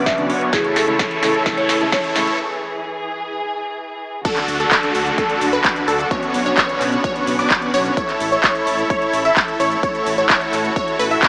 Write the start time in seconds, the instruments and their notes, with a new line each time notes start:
Already playing: felt piano C#3 F#3 B3 F#4, string section F#3 B4, supersaw synth B3 C#4 D4 F#4 D5, riser
0.06 marimba E5, kick, snare, closed hi-hat
0.17 felt piano C#3 F#3 B3 D4, closed hi-hat
0.30 supersaw synth B3 C#4 D4 F#4 C#5, open hi-hat
0.41 closed hi-hat
0.52 felt piano C#3 E3 A3 E4, string section E3 A4, supersaw synth E4 A4 C#5, marimba G#4, kick, snare, closed hi-hat
0.64 closed hi-hat
0.76 marimba A4, snare, open hi-hat
0.87 felt piano C#3 E3 A3 E4, supersaw synth E4 A4 C#5, closed hi-hat
0.99 supersaw synth E4 A4 C#5, kick, snare, closed hi-hat
1.11 closed hi-hat
1.22 felt piano C#3 E3 A3 E4, marimba A4, snare, open hi-hat
1.34 closed hi-hat
1.45 felt piano C#3 E3 A3 E4, supersaw synth E4 A4 C#5, kick, snare, closed hi-hat
1.58 marimba C#5, closed hi-hat
1.69 snare, open hi-hat
1.80 felt piano C#3 E3 A3 E4, supersaw synth E4 A4 C#5, closed hi-hat
1.92 supersaw synth E4 A4 C#5, marimba C#5, kick, snare, closed hi-hat
2.04 closed hi-hat
2.15 felt piano C#3 E3 A3 E4, snare, open hi-hat
2.27 closed hi-hat
2.39 string section G#4
4.25 string section D3 A3 F#4, supersaw synth D4 F#4 A4, synth pluck A4, kick, closed hi-hat, crash, downlifter, cabasa
4.36 clap, closed hi-hat, cabasa
4.48 detuned saw bass D2, open hi-hat, cabasa
4.60 supersaw synth D4 F#4 A4, synth pluck A4, closed hi-hat, cabasa
4.71 supersaw synth D4 F#4 A4, synth pluck A4, kick, clap, closed hi-hat, cabasa
4.83 closed hi-hat, cabasa
4.95 detuned saw bass D2, open hi-hat, cabasa
5.06 closed hi-hat, cabasa
5.18 supersaw synth D4 F#4 A4, synth pluck A4, kick, closed hi-hat, cabasa
5.30 closed hi-hat, cabasa
5.41 detuned saw bass D2, open hi-hat, cabasa
5.53 supersaw synth D4 F#4 B4, synth pluck B4, closed hi-hat, cabasa
5.64 kick, clap, closed hi-hat, cabasa
5.76 closed hi-hat, cabasa
5.88 detuned saw bass D2, supersaw synth D4 F#4 A4, synth pluck A4, open hi-hat, cabasa
5.99 closed hi-hat, cabasa
6.11 supersaw synth B3 C#4 D4 F#4 C#5, string section B3, synth pluck C#5, kick, closed hi-hat, cabasa
6.23 closed hi-hat, cabasa
6.34 detuned saw bass B1, open hi-hat, cabasa
6.46 supersaw synth B3 C#4 D4 F#4 C#5, synth pluck C#5, cabasa
6.57 supersaw synth B3 C#4 D4 F#4 C#5, synth pluck C#5, kick, clap, closed hi-hat, cabasa
6.69 closed hi-hat, cabasa
6.81 detuned saw bass B1, clap, open hi-hat, cabasa
6.92 closed hi-hat, cabasa
7.04 supersaw synth B3 C#4 D4 F#4 C#5, synth pluck C#5, kick, closed hi-hat, cabasa
7.16 closed hi-hat, cabasa
7.27 detuned saw bass B1, open hi-hat, cabasa
7.39 supersaw synth B3 C#4 D4 F#4 D5, synth pluck D6, open hi-hat, cabasa
7.50 kick, clap, closed hi-hat, cabasa
7.62 closed hi-hat, cabasa
7.74 detuned saw bass B1, supersaw synth B3 C#4 D4 F#4 C#5, synth pluck C#5, open hi-hat, cabasa
7.85 closed hi-hat, cabasa
7.97 string section A3 E4, supersaw synth E4 A4 C#5, synth pluck C#5, kick, closed hi-hat, cabasa
8.09 clap, closed hi-hat, cabasa
8.20 detuned saw bass A1, open hi-hat, cabasa
8.32 supersaw synth E4 A4 C#5, synth pluck C#5, closed hi-hat, cabasa
8.43 supersaw synth E4 A4 C#5, synth pluck C#5, kick, clap, closed hi-hat, cabasa
8.55 closed hi-hat, cabasa
8.67 detuned saw bass A1, open hi-hat, cabasa
8.79 closed hi-hat, cabasa
8.90 supersaw synth E4 A4 C#5, synth pluck C#5, kick, closed hi-hat, cabasa
9.02 closed hi-hat, cabasa
9.13 detuned saw bass A1, open hi-hat, cabasa
9.25 supersaw synth E4 A4 E5, synth pluck E5, closed hi-hat, cabasa
9.36 kick, clap, closed hi-hat, cabasa
9.48 closed hi-hat, cabasa
9.60 detuned saw bass A1, supersaw synth E4 A4 C#5, synth pluck C#5, open hi-hat, cabasa
9.71 closed hi-hat, cabasa
9.83 supersaw synth E4 A4 C#5, string section F#4, synth pluck C#5, kick, closed hi-hat, cabasa
9.95 closed hi-hat, cabasa
10.06 detuned saw bass A1, open hi-hat, cabasa
10.18 supersaw synth E4 A4 C#5, synth pluck C#5, closed hi-hat, cabasa
10.29 supersaw synth E4 A4 C#5, synth pluck C#5, kick, clap, closed hi-hat, cabasa
10.41 closed hi-hat, cabasa
10.53 detuned saw bass A1, clap, open hi-hat, cabasa
10.65 closed hi-hat, cabasa
10.76 supersaw synth E4 A4 C#5, synth pluck C#5, kick, closed hi-hat, cabasa
10.88 closed hi-hat, cabasa
10.99 detuned saw bass A1, supersaw synth E4 A4 B4, synth pluck B4, open hi-hat, cabasa
11.11 supersaw synth E4 A4 E5, synth pluck E5, open hi-hat, cabasa
11.23 kick, clap, closed hi-hat, cabasa